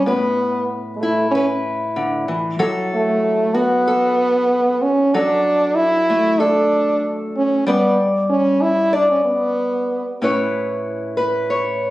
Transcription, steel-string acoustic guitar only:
0.06 2.61 A2 medium
0.06 1.34 B4 medium
1.03 3.54 E4 medium
1.35 2.58 B4 medium
1.96 2.28 D3 medium
2.28 2.59 E3 medium
2.59 5.10 F#3 medium
2.59 3.87 A4 medium
3.54 5.10 F#4 medium
3.87 5.14 A4 medium
5.14 7.64 F#3 medium
5.14 6.39 A4 medium
6.10 7.66 A3 medium
6.40 7.67 A4 medium
7.67 10.20 G3 medium
7.67 8.92 D5 medium
8.93 10.17 D5 medium
10.22 11.90 A2 medium
10.22 11.90 C#4 medium
10.22 11.90 E4 medium
10.22 11.16 B4 medium
10.22 11.49 C#5 medium
11.17 11.90 B4 medium
11.50 11.90 C#5 medium

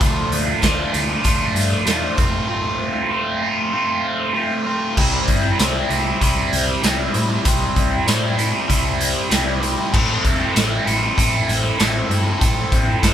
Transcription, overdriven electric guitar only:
0.00 0.61 F3 medium
0.00 0.62 A3 loud
0.00 0.61 D4 loud
0.00 0.62 F4 medium
0.61 0.92 F3 medium
0.61 0.93 A3 medium
0.61 0.93 D4 loud
0.61 0.94 F4 loud
0.93 1.23 F3 medium
0.93 1.24 A3 medium
0.93 1.24 D4 medium
0.93 1.24 F4 loud
1.24 1.85 F3 loud
1.24 1.86 A3 loud
1.24 1.86 D4 loud
1.24 1.87 F4 medium
1.86 2.16 F3 medium
1.86 2.16 A3 medium
1.86 2.17 D4 medium
1.86 2.17 F4 medium
2.17 2.47 A3 loud
2.17 2.48 C4 medium
2.17 2.48 F4 loud
2.48 3.09 A3 medium
2.48 3.10 C4 loud
2.48 3.10 F4 loud
3.11 3.41 A3 medium
3.11 3.41 C4 loud
3.11 3.42 F4 medium
3.42 3.72 A3 medium
3.42 3.72 C4 medium
3.42 3.73 F4 medium
3.73 4.33 A3 loud
3.73 4.33 C4 loud
3.73 4.34 F4 loud
4.34 4.65 A3 medium
4.34 4.65 C4 medium
4.34 4.66 F4 medium
4.66 4.95 A3 loud
4.66 4.96 C4 medium
4.66 4.96 F4 loud
4.97 5.59 G3 loud
4.97 5.60 C4 medium
4.97 5.60 E4 loud
5.60 5.89 G3 medium
5.60 5.90 C4 medium
5.60 5.90 E4 medium
5.90 6.21 G3 medium
5.90 6.21 C4 medium
5.90 6.22 E4 loud
6.22 6.82 G3 medium
6.22 6.83 C4 medium
6.22 6.84 E4 loud
6.82 7.14 G3 medium
6.82 7.14 C4 medium
6.82 7.15 E4 loud
7.14 7.44 G3 medium
7.14 7.45 C4 loud
7.14 7.45 E4 loud
7.45 8.06 G3 loud
7.45 8.07 C4 loud
7.45 8.07 E4 loud
8.07 8.37 G3 medium
8.07 8.38 C4 loud
8.07 8.38 E4 loud
8.38 8.68 G3 medium
8.38 8.68 C4 medium
8.38 8.68 E4 loud
8.68 9.30 G3 medium
8.68 9.30 C4 loud
8.68 9.31 E4 loud
9.30 9.61 G3 medium
9.30 9.61 C4 loud
9.30 9.62 E4 medium
9.61 9.97 G3 loud
9.61 9.92 C4 loud
9.61 9.93 E4 loud
9.93 10.55 C4 loud
9.93 10.55 E4 loud
9.93 10.56 A4 loud
10.55 10.86 C4 medium
10.55 10.86 E4 loud
10.55 10.87 A4 loud
10.86 11.16 C4 loud
10.86 11.17 E4 medium
10.86 11.16 A4 medium
11.16 11.78 C4 loud
11.16 11.78 E4 loud
11.16 11.78 A4 loud
11.78 12.09 C4 medium
11.78 12.10 E4 loud
11.78 12.09 A4 loud
12.09 12.40 C4 loud
12.09 12.40 E4 loud
12.09 12.40 A4 loud
12.41 13.02 C4 loud
12.41 13.03 E4 loud
12.41 13.03 A4 loud
13.03 13.14 C4 medium
13.03 13.14 E4 loud
13.03 13.14 A4 loud

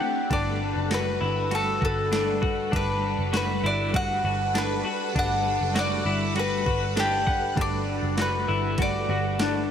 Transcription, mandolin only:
0.00 0.33 G4 medium
0.33 0.88 D5 loud
0.94 1.55 B4 medium
1.55 1.84 A4 loud
1.85 2.70 A4 loud
2.76 3.35 B4 loud
3.37 3.66 B4 loud
3.66 3.96 D5 loud
3.96 4.58 F#5 loud
4.58 5.19 B4 loud
5.19 5.79 F#5 loud
5.79 6.39 D5 loud
6.39 6.95 B4 loud
7.00 7.61 G4 loud
7.61 8.21 D5 loud
8.22 8.81 B4 loud
8.82 9.67 D5 loud

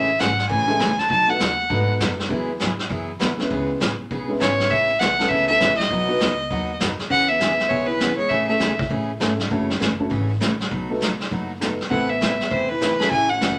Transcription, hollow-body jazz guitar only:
7.10 7.29 C#4 medium
7.29 7.69 B3 medium
7.69 7.89 G#3 medium
7.88 8.18 E3 medium
8.18 8.30 G#3 medium
8.30 8.49 A3 medium
8.50 8.77 A3 medium
11.91 12.10 C4 medium
12.10 12.51 B3 medium
12.51 12.70 A3 medium
12.71 13.00 E3 medium
13.00 13.11 G#4 medium
13.12 13.31 E4 medium
13.31 13.59 C#4 medium

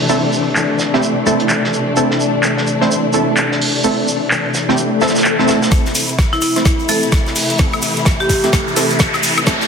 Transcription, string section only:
0.00 5.68 C3 medium
0.00 5.68 E3 medium
0.00 5.68 A3 medium
0.00 5.68 D4 medium
5.72 9.67 C3 medium
5.72 9.67 E3 medium
5.72 9.43 E4 medium
9.47 9.67 D4 medium

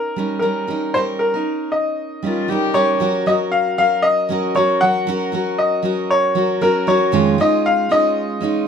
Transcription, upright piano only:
0.00 0.38 A#4 medium
0.39 0.89 A#4 medium
0.94 1.00 C5 medium
1.19 1.68 A#4 medium
1.72 2.71 D#5 medium
2.74 3.28 C#5 loud
3.27 3.33 D#5 medium
3.52 3.77 F5 medium
3.78 4.05 F5 loud
4.02 4.51 D#5 loud
4.56 4.82 C#5 loud
4.81 5.60 F#5 loud
5.58 6.11 D#5 medium
6.10 6.63 C#5 loud
6.62 6.88 A#4 medium
6.88 7.35 C#5 medium
7.41 7.66 D#5 loud
7.66 7.89 F5 loud
7.92 8.68 D#5 loud

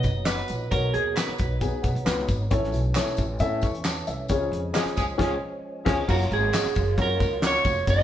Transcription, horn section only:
4.75 4.82 F3 medium
4.75 4.82 G#3 medium
4.75 4.82 C#4 medium
4.75 4.82 G#4 loud
4.96 5.04 F3 medium
4.96 5.04 G#3 loud
4.96 5.04 C#4 medium
4.96 5.04 G#4 loud
5.19 5.31 F3 loud
5.19 5.31 G#3 medium
5.19 5.31 C#4 loud
5.19 5.31 G#4 loud
5.84 5.96 F3 loud
5.84 5.96 G#3 medium
5.84 5.97 C#4 medium
5.84 5.96 G#4 loud
6.08 6.40 F#3 loud
6.08 6.40 A#3 loud
6.08 6.40 F4 loud
6.08 6.40 A#4 loud

